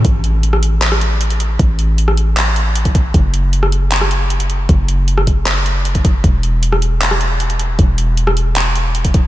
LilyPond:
<<
  \new Staff \with { instrumentName = "808-style bass" } { \clef bass \time 4/4 \key fis \dorian \tempo 4 = 155 a,,1 | a,,1 | fis,,1 | fis,,1 |
e,,1 | e,,1 | }
  \new DrumStaff \with { instrumentName = "Drums" } \drummode { \time 4/4 <hh bd>8 hh8 hh16 ss16 hh8 <hc hh>16 ss16 hh8 hh16 hh16 hh8 | <hh bd>8 hh8 hh16 ss16 hh8 <hc hh>8 hh8 hh16 <hh bd>16 <hh bd>8 | <hh bd>8 hh8 hh16 ss16 hh8 <hc hh>16 ss16 hh8 hh16 hh16 hh8 | <hh bd>8 hh8 hh16 ss16 <hh bd>8 <hc hh>8 hh8 hh16 <hh bd>16 <hh bd>8 |
<hh bd>8 hh8 hh16 ss16 hh8 <hc hh>16 ss16 hh8 hh16 hh16 hh8 | <hh bd>8 hh8 hh16 ss16 hh8 <hc hh>8 hh8 hh16 <hh bd>16 <hh bd>8 | }
>>